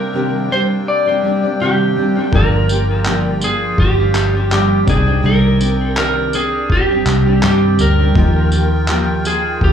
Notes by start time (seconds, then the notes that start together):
Already playing: C3 G3 A#3 C4 D4 G4 A#4 G5
0.13 C3 D#3 G3 C4 D4 G4
0.50 G3 C4 D4 G4 C5
0.88 D5
1.06 G3 C4 D4 G4
1.22 G3 C4 D4 G4
1.42 G3 C4 D4 G4
1.60 C3 D#3 G3 C4 D4 G4
1.95 G3 C4 D4 G4
2.15 G3 C4 D4 G4
2.31 G1 G2 D3 F3 A#3 D4 F4 G4 D5 G5, kick
2.35 A#4
2.68 F3 A#3 D4 G4, tambourine
3.05 G2 D3 F3 A#3 D4 G4, clap
3.41 F3 A#3 D4 G#4, tambourine
3.78 G1 G4, kick
3.96 F3 A#3 D4 G4
4.12 F3 A#3 D4 G4, clap, tambourine
4.33 F3 A#3 D4 G4
4.50 G2 D3 F3 A#3 D4 G4, clap
4.85 C2 C3 G3 C4 D4 D#4 G4 D5 G5, kick, tambourine
4.89 G#4 D5
5.06 G3 C4 D4 G4
5.22 C2 C3 D#3 G3 C4 D4 G4 A#4
5.59 G3 C4 D4 G4, tambourine
5.96 C3 D#3 G3 C4 D4 G4 A#4, clap
6.33 C4 D4 G#4, tambourine
6.70 G4, kick
6.90 G3 C4 D4 G4
7.05 C2 G3 C4 D4 G4, clap, tambourine
7.25 G3 C4 D4 G4
7.42 G2 C3 D#3 G3 C4 D4 G4, clap
7.78 D2 G3 C4 D4 G4 A#4, tambourine
7.98 G3 C4 D4 G4
8.14 D#2 D#3 F3 A#3 D#4 F4 G4 A#4 G5, kick
8.19 D#5
8.51 F3 A#3 F4 G4, tambourine
8.88 D#3 F3 A#3 F4 G4, clap
9.23 F3 A#3 F4 G#4, tambourine
9.61 D#2 G4, kick